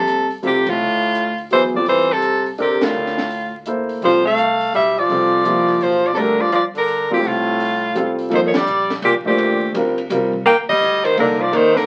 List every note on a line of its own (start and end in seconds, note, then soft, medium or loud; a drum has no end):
0.00 0.39 G1 medium
0.00 0.28 C3 medium
0.00 0.30 A4 medium
0.08 closed hi-hat soft
0.31 open hi-hat soft
0.42 0.77 F1 medium
0.42 0.71 C3 medium
0.42 0.64 G3 medium
0.42 0.64 C4 soft
0.42 0.64 F4 soft
0.42 0.65 A4 medium
0.42 open hi-hat soft
0.47 0.72 G4 medium
0.67 1.40 A2 medium
0.67 1.40 F4 medium
0.67 kick medium
0.67 ride medium
0.79 1.83 D2 medium
1.15 closed hi-hat soft
1.38 open hi-hat soft
1.50 1.63 E3 medium
1.50 1.72 F#3 medium
1.50 1.73 B3 soft
1.50 1.73 E4 soft
1.50 1.73 G#4 medium
1.50 1.63 C5 medium
1.50 open hi-hat soft
1.74 1.87 F3 medium
1.74 2.05 G3 soft
1.74 2.06 C4 soft
1.74 2.06 F4 soft
1.74 2.06 A4 soft
1.74 1.87 D5 medium
1.86 2.54 G1 medium
1.86 2.15 E3 medium
1.86 2.14 C5 medium
1.86 open hi-hat soft
2.12 2.48 C3 medium
2.12 2.47 A4 loud
2.22 closed hi-hat soft
2.46 open hi-hat soft
2.58 2.92 D2 medium
2.58 2.85 C3 medium
2.58 3.13 D4 medium
2.58 3.13 G4 medium
2.58 2.85 G4 medium
2.58 3.13 A4 medium
2.58 3.14 A#4 medium
2.58 open hi-hat soft
2.81 3.55 A2 medium
2.81 3.55 F4 medium
2.81 snare medium
2.81 ride medium
2.94 3.98 D2 medium
3.06 snare soft
3.18 snare soft
3.30 open hi-hat soft
3.66 4.02 A#3 medium
3.66 4.02 E4 medium
3.66 4.03 A4 medium
3.66 4.03 C5 medium
3.66 closed hi-hat medium
3.89 open hi-hat soft
4.01 4.69 C2 medium
4.01 4.25 F3 medium
4.01 4.23 G3 medium
4.01 4.23 C4 medium
4.01 4.24 F4 medium
4.01 4.24 A4 medium
4.01 4.25 C5 medium
4.01 open hi-hat soft
4.25 4.70 A3 medium
4.25 4.71 F5 loud
4.38 closed hi-hat medium
4.61 open hi-hat soft
4.73 5.07 B1 medium
4.73 5.00 G3 medium
4.73 5.00 E5 medium
4.73 open hi-hat soft
4.98 5.81 F3 medium
4.98 5.84 D5 medium
5.09 5.77 C2 medium
5.09 5.44 G3 medium
5.09 5.44 C4 medium
5.09 5.45 F4 soft
5.09 5.45 A4 medium
5.09 open hi-hat soft
5.44 5.99 F3 medium
5.44 5.99 A#3 soft
5.44 6.00 E4 medium
5.44 6.00 G4 medium
5.44 closed hi-hat medium
5.69 open hi-hat soft
5.81 6.14 B1 medium
5.81 6.05 F3 medium
5.81 6.08 C5 medium
5.81 open hi-hat soft
6.05 6.13 F3 medium
6.05 6.14 D5 medium
6.13 7.07 G1 medium
6.13 6.19 C3 medium
6.13 6.38 A3 medium
6.13 6.19 A4 medium
6.13 open hi-hat soft
6.17 6.42 D3 medium
6.17 6.38 D4 medium
6.17 6.38 G4 medium
6.17 6.43 A#4 medium
6.17 6.39 A#4 medium
6.41 6.52 F3 medium
6.41 6.53 D5 medium
6.52 6.63 F3 medium
6.52 6.65 D5 medium
6.52 closed hi-hat soft
6.75 7.09 D3 medium
6.75 7.10 A#4 medium
6.75 open hi-hat soft
6.88 open hi-hat soft
7.10 7.23 A#2 medium
7.10 7.57 G3 soft
7.10 7.57 C4 soft
7.10 7.58 F4 soft
7.10 7.29 G4 medium
7.10 7.58 A4 medium
7.10 muted upright bass stroke soft
7.22 8.27 C2 medium
7.22 8.18 A2 medium
7.22 open hi-hat soft
7.28 8.21 F4 medium
7.60 open hi-hat soft
7.95 8.31 G3 medium
7.95 8.31 C4 medium
7.95 8.32 F4 medium
7.95 8.30 A4 medium
7.95 closed hi-hat medium
8.19 open hi-hat soft
8.30 8.52 G1 medium
8.30 8.38 D#3 medium
8.30 8.51 F3 medium
8.30 8.52 A#3 medium
8.30 8.52 D#4 medium
8.30 8.52 A4 medium
8.30 ride soft
8.35 8.41 C5 medium
8.45 8.56 D#3 medium
8.45 8.58 C#5 medium
8.54 8.91 G3 medium
8.54 8.91 D5 loud
8.54 muted upright bass stroke soft
8.54 snare medium
8.54 ride medium
8.66 9.01 A#1 medium
8.66 hi-hat pedal medium
8.90 snare soft
8.90 ride soft
9.02 9.14 C2 loud
9.02 9.14 A#2 medium
9.02 9.15 G4 medium
9.02 ride medium
9.14 9.26 A#1 medium
9.25 9.38 G1 medium
9.25 9.71 A#2 medium
9.25 9.72 A3 medium
9.25 9.72 D4 medium
9.25 9.72 G4 medium
9.25 9.72 C5 medium
9.38 9.73 D#2 medium
9.38 ride medium
9.74 10.09 D2 medium
9.74 9.95 G3 medium
9.74 9.95 C4 medium
9.74 9.96 F4 medium
9.74 9.96 A#4 medium
9.74 hi-hat pedal medium
9.74 ride medium
9.98 ride soft
10.10 10.45 C2 loud
10.10 10.31 G3 medium
10.10 10.32 C4 medium
10.10 10.32 F4 medium
10.10 10.32 A#4 medium
10.10 hi-hat pedal medium
10.10 ride medium
10.33 kick soft
10.45 10.80 D#2 medium
10.45 10.56 A#3 loud
10.45 10.57 G5 loud
10.45 ride medium
10.69 11.06 G3 medium
10.69 11.07 D#5 loud
10.69 kick medium
10.69 crash medium
10.81 11.16 D2 loud
10.81 hi-hat pedal medium
11.05 11.18 D#3 medium
11.05 11.18 C5 medium
11.05 ride soft
11.17 11.52 C2 medium
11.17 11.42 D3 medium
11.17 11.38 A#3 medium
11.17 11.38 D#4 medium
11.17 11.39 A4 medium
11.17 11.44 A#4 medium
11.17 11.39 D5 medium
11.17 ride medium
11.40 11.55 F3 medium
11.40 11.58 D5 medium
11.52 11.86 D#2 medium
11.52 11.77 D#3 medium
11.52 11.86 A#3 medium
11.52 11.86 D#4 medium
11.52 11.86 A4 soft
11.52 11.86 D5 medium
11.52 ride medium
11.56 11.79 C5 loud
11.75 11.86 D3 medium
11.75 11.86 A#4 loud
11.75 snare soft